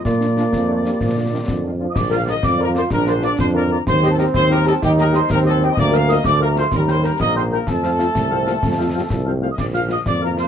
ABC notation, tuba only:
X:1
M:6/8
L:1/8
Q:3/8=126
K:Bb
V:1 name="Tuba" clef=bass
B,,3 F,,3 | B,,3 F,,3 | B,,,3 F,,3 | B,,,3 F,,3 |
E,,3 E,,3 | E,,3 E,,3 | D,,3 D,,3 | E,,3 B,,,3 |
F,,3 C,,3 | F,,3 C,,3 | B,,,3 F,,3 |]